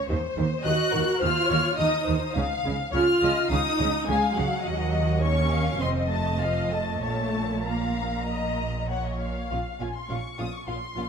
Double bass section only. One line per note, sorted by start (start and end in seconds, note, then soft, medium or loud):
0.09 0.17 D#2 medium
0.37 0.45 D#2 medium
0.65 0.73 D#2 medium
0.93 1.01 D#2 medium
1.22 1.30 D#2 medium
1.50 1.58 D#2 medium
1.79 1.87 D#2 medium
2.08 2.16 D#2 medium
2.36 2.44 C#2 medium
2.65 2.73 C#2 medium
2.94 3.02 C#2 medium
3.22 3.30 C#2 medium
3.51 3.59 C#2 medium
3.80 3.88 C#2 medium
4.09 4.17 C#2 medium
4.37 4.45 C#2 medium
4.66 5.77 D#2 medium
5.81 7.03 F1 medium
7.02 9.26 A#1 medium
9.51 9.59 A#1 soft
9.81 9.89 A#1 soft
10.10 10.18 A#1 soft
10.39 10.47 A#1 soft
10.68 10.76 A#1 soft
10.97 11.05 A#1 soft